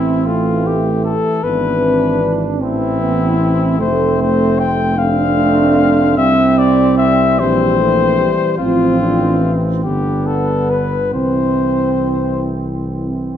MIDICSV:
0, 0, Header, 1, 6, 480
1, 0, Start_track
1, 0, Key_signature, 0, "major"
1, 0, Tempo, 784314
1, 881, Time_signature, 6, 3, 24, 8
1, 2808, Tempo, 802139
1, 5208, Tempo, 835655
1, 6168, Tempo, 870827
1, 7878, End_track
2, 0, Start_track
2, 0, Title_t, "Cornet"
2, 0, Program_c, 0, 56
2, 0, Note_on_c, 0, 64, 52
2, 161, Note_on_c, 0, 65, 50
2, 170, Note_off_c, 0, 64, 0
2, 408, Note_on_c, 0, 67, 48
2, 417, Note_off_c, 0, 65, 0
2, 639, Note_off_c, 0, 67, 0
2, 642, Note_on_c, 0, 69, 51
2, 879, Note_on_c, 0, 71, 59
2, 888, Note_off_c, 0, 69, 0
2, 1433, Note_off_c, 0, 71, 0
2, 1599, Note_on_c, 0, 64, 62
2, 2304, Note_off_c, 0, 64, 0
2, 2329, Note_on_c, 0, 72, 66
2, 2563, Note_off_c, 0, 72, 0
2, 2582, Note_on_c, 0, 72, 65
2, 2813, Note_on_c, 0, 79, 65
2, 2822, Note_off_c, 0, 72, 0
2, 3044, Note_on_c, 0, 77, 60
2, 3053, Note_off_c, 0, 79, 0
2, 3753, Note_off_c, 0, 77, 0
2, 3757, Note_on_c, 0, 76, 69
2, 4001, Note_on_c, 0, 74, 64
2, 4010, Note_off_c, 0, 76, 0
2, 4233, Note_off_c, 0, 74, 0
2, 4236, Note_on_c, 0, 76, 68
2, 4487, Note_on_c, 0, 72, 70
2, 4496, Note_off_c, 0, 76, 0
2, 5192, Note_off_c, 0, 72, 0
2, 5196, Note_on_c, 0, 65, 61
2, 5744, Note_off_c, 0, 65, 0
2, 5919, Note_on_c, 0, 67, 50
2, 6165, Note_on_c, 0, 69, 49
2, 6173, Note_off_c, 0, 67, 0
2, 6405, Note_on_c, 0, 71, 45
2, 6413, Note_off_c, 0, 69, 0
2, 6646, Note_off_c, 0, 71, 0
2, 6649, Note_on_c, 0, 72, 48
2, 7351, Note_off_c, 0, 72, 0
2, 7878, End_track
3, 0, Start_track
3, 0, Title_t, "Euphonium"
3, 0, Program_c, 1, 58
3, 0, Note_on_c, 1, 60, 40
3, 162, Note_on_c, 1, 57, 47
3, 171, Note_off_c, 1, 60, 0
3, 876, Note_off_c, 1, 57, 0
3, 880, Note_on_c, 1, 59, 45
3, 1118, Note_on_c, 1, 60, 45
3, 1127, Note_off_c, 1, 59, 0
3, 1353, Note_on_c, 1, 62, 45
3, 1362, Note_off_c, 1, 60, 0
3, 1586, Note_on_c, 1, 60, 51
3, 1595, Note_off_c, 1, 62, 0
3, 1837, Note_on_c, 1, 59, 45
3, 1846, Note_off_c, 1, 60, 0
3, 2078, Note_on_c, 1, 60, 52
3, 2088, Note_off_c, 1, 59, 0
3, 2315, Note_off_c, 1, 60, 0
3, 2319, Note_on_c, 1, 57, 56
3, 2868, Note_off_c, 1, 57, 0
3, 3034, Note_on_c, 1, 62, 67
3, 3755, Note_on_c, 1, 60, 57
3, 3764, Note_off_c, 1, 62, 0
3, 4484, Note_on_c, 1, 55, 53
3, 4493, Note_off_c, 1, 60, 0
3, 4727, Note_on_c, 1, 57, 50
3, 4735, Note_off_c, 1, 55, 0
3, 4960, Note_on_c, 1, 55, 50
3, 4969, Note_off_c, 1, 57, 0
3, 5200, Note_off_c, 1, 55, 0
3, 5204, Note_on_c, 1, 60, 53
3, 5442, Note_on_c, 1, 62, 50
3, 5450, Note_off_c, 1, 60, 0
3, 5683, Note_on_c, 1, 60, 43
3, 5692, Note_off_c, 1, 62, 0
3, 5919, Note_on_c, 1, 59, 51
3, 5928, Note_off_c, 1, 60, 0
3, 6640, Note_off_c, 1, 59, 0
3, 6643, Note_on_c, 1, 60, 44
3, 7704, Note_off_c, 1, 60, 0
3, 7878, End_track
4, 0, Start_track
4, 0, Title_t, "Flugelhorn"
4, 0, Program_c, 2, 56
4, 0, Note_on_c, 2, 60, 39
4, 693, Note_off_c, 2, 60, 0
4, 869, Note_on_c, 2, 62, 44
4, 1598, Note_on_c, 2, 60, 48
4, 1607, Note_off_c, 2, 62, 0
4, 2310, Note_off_c, 2, 60, 0
4, 2314, Note_on_c, 2, 60, 50
4, 3025, Note_off_c, 2, 60, 0
4, 3039, Note_on_c, 2, 60, 52
4, 3745, Note_off_c, 2, 60, 0
4, 3770, Note_on_c, 2, 60, 50
4, 4478, Note_off_c, 2, 60, 0
4, 4496, Note_on_c, 2, 60, 52
4, 5035, Note_off_c, 2, 60, 0
4, 5208, Note_on_c, 2, 60, 48
4, 5903, Note_off_c, 2, 60, 0
4, 5922, Note_on_c, 2, 59, 43
4, 6631, Note_off_c, 2, 59, 0
4, 6646, Note_on_c, 2, 60, 37
4, 7878, Note_off_c, 2, 60, 0
4, 7878, End_track
5, 0, Start_track
5, 0, Title_t, "Trombone section"
5, 0, Program_c, 3, 61
5, 0, Note_on_c, 3, 52, 38
5, 854, Note_off_c, 3, 52, 0
5, 877, Note_on_c, 3, 52, 42
5, 1493, Note_off_c, 3, 52, 0
5, 1597, Note_on_c, 3, 52, 49
5, 2313, Note_off_c, 3, 52, 0
5, 2322, Note_on_c, 3, 57, 47
5, 3034, Note_off_c, 3, 57, 0
5, 3041, Note_on_c, 3, 57, 52
5, 3747, Note_off_c, 3, 57, 0
5, 3762, Note_on_c, 3, 55, 46
5, 4474, Note_off_c, 3, 55, 0
5, 4485, Note_on_c, 3, 52, 49
5, 5203, Note_on_c, 3, 53, 44
5, 5207, Note_off_c, 3, 52, 0
5, 5556, Note_off_c, 3, 53, 0
5, 5567, Note_on_c, 3, 52, 43
5, 5920, Note_off_c, 3, 52, 0
5, 5927, Note_on_c, 3, 50, 41
5, 6547, Note_off_c, 3, 50, 0
5, 6641, Note_on_c, 3, 52, 35
5, 7877, Note_off_c, 3, 52, 0
5, 7878, End_track
6, 0, Start_track
6, 0, Title_t, "Tuba"
6, 0, Program_c, 4, 58
6, 0, Note_on_c, 4, 33, 38
6, 693, Note_off_c, 4, 33, 0
6, 883, Note_on_c, 4, 32, 42
6, 1603, Note_on_c, 4, 33, 50
6, 1613, Note_off_c, 4, 32, 0
6, 2324, Note_off_c, 4, 33, 0
6, 2328, Note_on_c, 4, 29, 48
6, 3740, Note_off_c, 4, 29, 0
6, 3760, Note_on_c, 4, 36, 52
6, 4493, Note_on_c, 4, 34, 51
6, 4502, Note_off_c, 4, 36, 0
6, 5045, Note_off_c, 4, 34, 0
6, 5209, Note_on_c, 4, 33, 48
6, 5926, Note_on_c, 4, 31, 42
6, 5935, Note_off_c, 4, 33, 0
6, 6646, Note_on_c, 4, 36, 37
6, 6654, Note_off_c, 4, 31, 0
6, 7878, Note_off_c, 4, 36, 0
6, 7878, End_track
0, 0, End_of_file